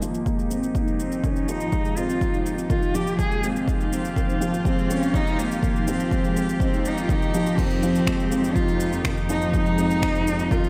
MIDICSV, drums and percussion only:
0, 0, Header, 1, 2, 480
1, 0, Start_track
1, 0, Key_signature, -4, "minor"
1, 0, Tempo, 487805
1, 1704, Time_signature, 4, 2, 24, 8
1, 10522, End_track
2, 0, Start_track
2, 0, Title_t, "Drums"
2, 21, Note_on_c, 9, 82, 60
2, 120, Note_off_c, 9, 82, 0
2, 142, Note_on_c, 9, 82, 27
2, 241, Note_off_c, 9, 82, 0
2, 257, Note_on_c, 9, 36, 90
2, 262, Note_on_c, 9, 82, 34
2, 355, Note_off_c, 9, 36, 0
2, 361, Note_off_c, 9, 82, 0
2, 385, Note_on_c, 9, 82, 19
2, 483, Note_off_c, 9, 82, 0
2, 501, Note_on_c, 9, 82, 65
2, 599, Note_off_c, 9, 82, 0
2, 623, Note_on_c, 9, 82, 30
2, 722, Note_off_c, 9, 82, 0
2, 737, Note_on_c, 9, 36, 94
2, 741, Note_on_c, 9, 82, 35
2, 835, Note_off_c, 9, 36, 0
2, 840, Note_off_c, 9, 82, 0
2, 862, Note_on_c, 9, 82, 19
2, 960, Note_off_c, 9, 82, 0
2, 981, Note_on_c, 9, 82, 63
2, 1079, Note_off_c, 9, 82, 0
2, 1102, Note_on_c, 9, 82, 29
2, 1200, Note_off_c, 9, 82, 0
2, 1217, Note_on_c, 9, 36, 89
2, 1221, Note_on_c, 9, 82, 37
2, 1315, Note_off_c, 9, 36, 0
2, 1320, Note_off_c, 9, 82, 0
2, 1339, Note_on_c, 9, 82, 20
2, 1437, Note_off_c, 9, 82, 0
2, 1461, Note_on_c, 9, 82, 66
2, 1560, Note_off_c, 9, 82, 0
2, 1578, Note_on_c, 9, 82, 29
2, 1676, Note_off_c, 9, 82, 0
2, 1697, Note_on_c, 9, 36, 99
2, 1697, Note_on_c, 9, 82, 37
2, 1795, Note_off_c, 9, 36, 0
2, 1795, Note_off_c, 9, 82, 0
2, 1818, Note_on_c, 9, 82, 20
2, 1916, Note_off_c, 9, 82, 0
2, 1937, Note_on_c, 9, 82, 69
2, 2035, Note_off_c, 9, 82, 0
2, 2061, Note_on_c, 9, 82, 30
2, 2160, Note_off_c, 9, 82, 0
2, 2177, Note_on_c, 9, 36, 90
2, 2182, Note_on_c, 9, 82, 36
2, 2276, Note_off_c, 9, 36, 0
2, 2280, Note_off_c, 9, 82, 0
2, 2302, Note_on_c, 9, 82, 20
2, 2400, Note_off_c, 9, 82, 0
2, 2421, Note_on_c, 9, 82, 63
2, 2520, Note_off_c, 9, 82, 0
2, 2541, Note_on_c, 9, 82, 31
2, 2639, Note_off_c, 9, 82, 0
2, 2656, Note_on_c, 9, 36, 103
2, 2658, Note_on_c, 9, 82, 40
2, 2755, Note_off_c, 9, 36, 0
2, 2756, Note_off_c, 9, 82, 0
2, 2778, Note_on_c, 9, 82, 19
2, 2876, Note_off_c, 9, 82, 0
2, 2901, Note_on_c, 9, 82, 66
2, 2999, Note_off_c, 9, 82, 0
2, 3021, Note_on_c, 9, 82, 31
2, 3119, Note_off_c, 9, 82, 0
2, 3137, Note_on_c, 9, 36, 96
2, 3140, Note_on_c, 9, 82, 41
2, 3235, Note_off_c, 9, 36, 0
2, 3238, Note_off_c, 9, 82, 0
2, 3262, Note_on_c, 9, 82, 20
2, 3360, Note_off_c, 9, 82, 0
2, 3380, Note_on_c, 9, 82, 68
2, 3478, Note_off_c, 9, 82, 0
2, 3506, Note_on_c, 9, 82, 30
2, 3604, Note_off_c, 9, 82, 0
2, 3617, Note_on_c, 9, 36, 101
2, 3626, Note_on_c, 9, 82, 39
2, 3716, Note_off_c, 9, 36, 0
2, 3724, Note_off_c, 9, 82, 0
2, 3743, Note_on_c, 9, 82, 19
2, 3842, Note_off_c, 9, 82, 0
2, 3865, Note_on_c, 9, 82, 73
2, 3963, Note_off_c, 9, 82, 0
2, 3982, Note_on_c, 9, 82, 30
2, 4080, Note_off_c, 9, 82, 0
2, 4097, Note_on_c, 9, 36, 99
2, 4107, Note_on_c, 9, 82, 42
2, 4196, Note_off_c, 9, 36, 0
2, 4205, Note_off_c, 9, 82, 0
2, 4226, Note_on_c, 9, 82, 21
2, 4324, Note_off_c, 9, 82, 0
2, 4346, Note_on_c, 9, 82, 72
2, 4445, Note_off_c, 9, 82, 0
2, 4467, Note_on_c, 9, 82, 33
2, 4566, Note_off_c, 9, 82, 0
2, 4578, Note_on_c, 9, 36, 106
2, 4586, Note_on_c, 9, 82, 39
2, 4676, Note_off_c, 9, 36, 0
2, 4685, Note_off_c, 9, 82, 0
2, 4710, Note_on_c, 9, 82, 20
2, 4808, Note_off_c, 9, 82, 0
2, 4827, Note_on_c, 9, 82, 73
2, 4925, Note_off_c, 9, 82, 0
2, 4947, Note_on_c, 9, 82, 34
2, 5046, Note_off_c, 9, 82, 0
2, 5058, Note_on_c, 9, 36, 109
2, 5070, Note_on_c, 9, 82, 46
2, 5156, Note_off_c, 9, 36, 0
2, 5168, Note_off_c, 9, 82, 0
2, 5186, Note_on_c, 9, 82, 22
2, 5284, Note_off_c, 9, 82, 0
2, 5305, Note_on_c, 9, 82, 72
2, 5403, Note_off_c, 9, 82, 0
2, 5426, Note_on_c, 9, 82, 33
2, 5524, Note_off_c, 9, 82, 0
2, 5537, Note_on_c, 9, 36, 101
2, 5546, Note_on_c, 9, 82, 42
2, 5635, Note_off_c, 9, 36, 0
2, 5644, Note_off_c, 9, 82, 0
2, 5666, Note_on_c, 9, 82, 19
2, 5765, Note_off_c, 9, 82, 0
2, 5782, Note_on_c, 9, 82, 70
2, 5880, Note_off_c, 9, 82, 0
2, 5904, Note_on_c, 9, 82, 31
2, 6002, Note_off_c, 9, 82, 0
2, 6016, Note_on_c, 9, 36, 99
2, 6024, Note_on_c, 9, 82, 41
2, 6114, Note_off_c, 9, 36, 0
2, 6122, Note_off_c, 9, 82, 0
2, 6143, Note_on_c, 9, 82, 22
2, 6241, Note_off_c, 9, 82, 0
2, 6264, Note_on_c, 9, 82, 73
2, 6362, Note_off_c, 9, 82, 0
2, 6386, Note_on_c, 9, 82, 33
2, 6485, Note_off_c, 9, 82, 0
2, 6496, Note_on_c, 9, 36, 103
2, 6506, Note_on_c, 9, 82, 42
2, 6594, Note_off_c, 9, 36, 0
2, 6605, Note_off_c, 9, 82, 0
2, 6629, Note_on_c, 9, 82, 21
2, 6727, Note_off_c, 9, 82, 0
2, 6742, Note_on_c, 9, 82, 74
2, 6841, Note_off_c, 9, 82, 0
2, 6865, Note_on_c, 9, 82, 34
2, 6963, Note_off_c, 9, 82, 0
2, 6977, Note_on_c, 9, 36, 107
2, 6986, Note_on_c, 9, 82, 46
2, 7075, Note_off_c, 9, 36, 0
2, 7084, Note_off_c, 9, 82, 0
2, 7106, Note_on_c, 9, 82, 22
2, 7204, Note_off_c, 9, 82, 0
2, 7223, Note_on_c, 9, 82, 77
2, 7322, Note_off_c, 9, 82, 0
2, 7345, Note_on_c, 9, 82, 34
2, 7443, Note_off_c, 9, 82, 0
2, 7458, Note_on_c, 9, 36, 106
2, 7465, Note_on_c, 9, 49, 98
2, 7465, Note_on_c, 9, 82, 39
2, 7556, Note_off_c, 9, 36, 0
2, 7564, Note_off_c, 9, 49, 0
2, 7564, Note_off_c, 9, 82, 0
2, 7582, Note_on_c, 9, 82, 20
2, 7680, Note_off_c, 9, 82, 0
2, 7702, Note_on_c, 9, 82, 70
2, 7801, Note_off_c, 9, 82, 0
2, 7825, Note_on_c, 9, 82, 31
2, 7923, Note_off_c, 9, 82, 0
2, 7938, Note_on_c, 9, 36, 94
2, 7944, Note_on_c, 9, 26, 90
2, 7944, Note_on_c, 9, 82, 41
2, 8036, Note_off_c, 9, 36, 0
2, 8042, Note_off_c, 9, 26, 0
2, 8042, Note_off_c, 9, 82, 0
2, 8068, Note_on_c, 9, 82, 21
2, 8166, Note_off_c, 9, 82, 0
2, 8185, Note_on_c, 9, 82, 70
2, 8283, Note_off_c, 9, 82, 0
2, 8305, Note_on_c, 9, 82, 31
2, 8403, Note_off_c, 9, 82, 0
2, 8420, Note_on_c, 9, 36, 105
2, 8423, Note_on_c, 9, 82, 40
2, 8518, Note_off_c, 9, 36, 0
2, 8522, Note_off_c, 9, 82, 0
2, 8543, Note_on_c, 9, 82, 21
2, 8642, Note_off_c, 9, 82, 0
2, 8662, Note_on_c, 9, 82, 70
2, 8760, Note_off_c, 9, 82, 0
2, 8783, Note_on_c, 9, 82, 31
2, 8882, Note_off_c, 9, 82, 0
2, 8901, Note_on_c, 9, 36, 95
2, 8904, Note_on_c, 9, 26, 101
2, 8904, Note_on_c, 9, 82, 41
2, 8999, Note_off_c, 9, 36, 0
2, 9002, Note_off_c, 9, 26, 0
2, 9002, Note_off_c, 9, 82, 0
2, 9024, Note_on_c, 9, 82, 21
2, 9122, Note_off_c, 9, 82, 0
2, 9145, Note_on_c, 9, 82, 73
2, 9243, Note_off_c, 9, 82, 0
2, 9267, Note_on_c, 9, 82, 31
2, 9365, Note_off_c, 9, 82, 0
2, 9382, Note_on_c, 9, 36, 109
2, 9385, Note_on_c, 9, 82, 38
2, 9481, Note_off_c, 9, 36, 0
2, 9484, Note_off_c, 9, 82, 0
2, 9506, Note_on_c, 9, 82, 21
2, 9604, Note_off_c, 9, 82, 0
2, 9625, Note_on_c, 9, 82, 76
2, 9724, Note_off_c, 9, 82, 0
2, 9748, Note_on_c, 9, 82, 33
2, 9846, Note_off_c, 9, 82, 0
2, 9863, Note_on_c, 9, 36, 103
2, 9868, Note_on_c, 9, 26, 93
2, 9868, Note_on_c, 9, 82, 38
2, 9962, Note_off_c, 9, 36, 0
2, 9966, Note_off_c, 9, 26, 0
2, 9966, Note_off_c, 9, 82, 0
2, 9989, Note_on_c, 9, 82, 23
2, 10087, Note_off_c, 9, 82, 0
2, 10109, Note_on_c, 9, 82, 70
2, 10207, Note_off_c, 9, 82, 0
2, 10226, Note_on_c, 9, 82, 33
2, 10325, Note_off_c, 9, 82, 0
2, 10343, Note_on_c, 9, 36, 108
2, 10349, Note_on_c, 9, 82, 41
2, 10441, Note_off_c, 9, 36, 0
2, 10448, Note_off_c, 9, 82, 0
2, 10470, Note_on_c, 9, 82, 22
2, 10522, Note_off_c, 9, 82, 0
2, 10522, End_track
0, 0, End_of_file